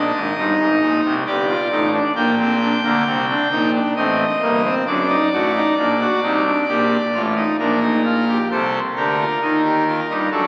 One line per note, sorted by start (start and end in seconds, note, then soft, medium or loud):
0.00 0.11 A#1 medium
0.00 0.12 A#2 medium
0.00 0.20 D4 medium
0.00 1.01 D#5 medium
0.15 0.34 G#1 medium
0.15 0.34 G#2 medium
0.37 0.56 G1 medium
0.37 0.56 G2 medium
0.37 1.14 D#4 medium
0.59 0.79 G#1 medium
0.59 0.79 G#2 medium
0.81 1.01 A#1 medium
0.81 1.01 A#2 medium
1.04 1.24 C2 medium
1.04 1.23 C3 medium
1.27 1.54 G1 medium
1.27 1.54 G2 medium
1.27 1.46 G4 medium
1.27 2.03 D5 medium
1.49 1.68 F4 medium
1.71 1.99 A1 medium
1.71 1.99 A2 medium
1.71 1.90 D#4 medium
1.93 2.12 D4 medium
2.15 2.74 A#1 medium
2.15 2.74 A#2 medium
2.15 2.35 A#3 medium
2.15 3.71 G5 medium
2.39 2.58 C4 medium
2.61 2.80 D4 medium
2.84 3.03 D2 loud
2.84 3.03 D3 loud
2.84 3.03 A#3 medium
3.06 3.34 C2 medium
3.06 3.34 C3 loud
3.06 3.25 C4 medium
3.29 3.48 D4 medium
3.51 3.79 A#1 medium
3.51 3.79 A#2 medium
3.51 3.70 D#4 medium
3.74 3.93 D4 medium
3.96 4.24 A1 medium
3.96 4.24 A2 medium
3.96 4.25 C4 medium
3.96 4.74 D#5 medium
4.41 4.69 G1 medium
4.41 4.69 G2 medium
4.41 4.61 A#3 medium
4.64 4.84 C4 medium
4.87 5.15 F#1 loud
4.87 5.15 F#2 loud
4.87 5.06 D4 medium
4.87 7.21 D5 medium
5.09 5.29 D#4 medium
5.32 5.60 A1 medium
5.32 5.60 A2 medium
5.32 5.52 F#4 medium
5.55 5.74 D#4 medium
5.78 6.06 A#1 medium
5.78 6.06 A#2 medium
5.78 5.97 D4 medium
6.01 6.20 F#4 medium
6.23 6.51 C2 medium
6.23 6.51 C3 medium
6.23 6.43 D#4 medium
6.46 6.65 D4 medium
6.69 6.97 A#1 loud
6.69 6.97 A#2 medium
6.69 6.97 G4 medium
7.14 7.42 A1 medium
7.14 7.42 A2 medium
7.14 7.34 F4 medium
7.36 7.56 D#4 medium
7.59 8.38 A#1 medium
7.59 8.38 A#2 medium
7.59 7.79 D4 medium
7.59 8.38 A#4 medium
7.82 8.02 D#4 medium
8.05 8.25 F4 medium
8.28 8.48 G4 medium
8.51 8.79 C2 medium
8.51 8.79 C3 medium
8.51 8.80 A4 medium
8.51 8.79 C5 medium
8.96 9.25 D2 medium
8.96 9.25 D3 medium
8.96 9.16 G4 medium
8.96 10.13 A#4 soft
9.20 9.39 F4 medium
9.42 10.00 D#2 medium
9.42 10.00 D#3 medium
9.42 9.61 D#4 medium
9.65 9.84 G4 medium
9.87 10.06 F4 medium
10.10 10.29 G2 medium
10.10 10.29 G3 medium
10.10 10.29 D#4 medium
10.31 10.47 F#2 medium
10.31 10.47 F#3 medium
10.31 10.47 D4 medium
10.31 10.47 A4 medium